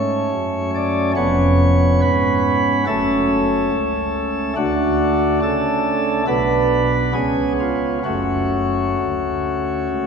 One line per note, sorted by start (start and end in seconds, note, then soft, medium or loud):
0.00 0.28 G#2 medium
0.00 1.13 A3 soft
0.00 1.13 C#4 soft
0.00 0.70 C#5 medium
0.32 1.15 F#2 medium
0.75 1.11 D5 medium
1.16 2.00 F1 medium
1.16 2.00 F2 medium
1.16 2.84 B3 soft
1.16 2.84 C#4 soft
1.16 2.00 C#5 loud
2.02 2.85 G#2 medium
2.02 2.85 B4 loud
2.87 3.69 F#1 medium
2.87 3.69 F#2 medium
2.87 4.53 A3 medium
2.87 4.53 C#4 medium
2.87 4.53 A4 loud
3.72 4.55 C#2 medium
4.56 5.40 D2 medium
4.56 5.40 D3 medium
4.56 6.23 A3 medium
4.56 6.23 D4 soft
4.56 5.40 F#4 loud
5.43 6.25 C#3 medium
5.43 6.25 A4 loud
6.27 7.13 B1 medium
6.27 7.12 B2 medium
6.27 7.11 B3 soft
6.27 7.13 D4 soft
6.27 7.13 B4 loud
7.13 8.02 C#2 medium
7.13 8.02 C#3 medium
7.13 8.02 B3 soft
7.13 8.02 C#4 soft
7.13 7.52 G#4 medium
7.60 7.98 F4 medium
8.05 8.95 F#1 medium
8.05 8.95 F#2 medium
8.05 10.07 A3 soft
8.05 10.07 C#4 soft
8.05 10.07 F#4 medium
8.98 9.87 D2 soft
9.89 10.07 C#2 medium